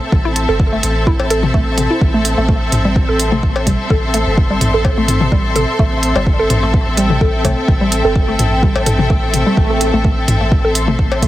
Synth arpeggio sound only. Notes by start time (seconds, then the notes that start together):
0.25 E4
0.49 A4
0.72 A3
1.07 E4
1.31 A4
1.54 A3
1.91 E4
2.14 A3
2.38 A3
2.49 A3
2.85 G3
3.09 A4
3.32 A3
3.67 G3
3.90 A4
4.14 A3
4.50 G3
4.74 A4
4.98 A3
5.32 G3
5.56 A4
5.79 A3
6.16 G3
6.39 A4
6.63 A3
6.98 G3
7.21 A4
7.45 A3
7.81 G3
8.05 A4
8.28 A3
8.63 G3
8.86 A4
9.10 A3
9.46 G3
9.70 A4
9.94 A3
10.05 A3
10.41 A3
10.65 A4
10.88 A3
11.23 A3